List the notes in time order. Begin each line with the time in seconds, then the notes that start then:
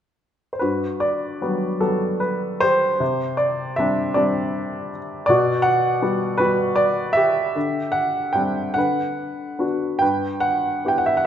0.53 C5
0.59 G2 F#4 B4
1.00 D5
1.42 F#3 G3 B3
1.80 F#3 G3 B3 A4
2.20 B4
2.60 G4 C5
3.00 C3
3.37 D5
3.76 G3 C4 D4 E5
4.14 G3 C4 D4 D5
5.26 B2 F#4 D5
5.62 F#5
6.02 G3 B3 F#4
6.38 G3 B3 F#4 B4
6.76 D5
7.13 G4 E5
7.56 D3
7.92 F#5
8.33 G3 C4 D4 G5
8.74 D3 F#5
8.78 B4
9.59 B3 D4 F#4
9.99 G2 B4 G5
10.40 F#5
10.85 B3 E4 G4 G5
10.98 F#5
11.06 E5
11.17 F#5